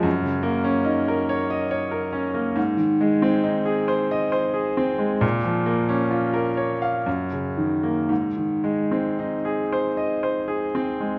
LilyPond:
\new Staff \with { instrumentName = "Grand piano" } { \time 3/4 \key aes \mixolydian \tempo 4 = 67 ges,16 des16 bes16 des'16 ees'16 bes'16 des''16 ees''16 des''16 bes'16 des'16 bes16 | aes,16 ees16 aes16 c'16 ees'16 aes'16 c''16 ees''16 c''16 aes'16 c'16 aes16 | bes,16 f16 bes16 des'16 f'16 bes'16 des''16 f''16 ges,16 des16 ees16 bes16 | aes,16 ees16 aes16 c'16 ees'16 aes'16 c''16 ees''16 c''16 aes'16 c'16 aes16 | }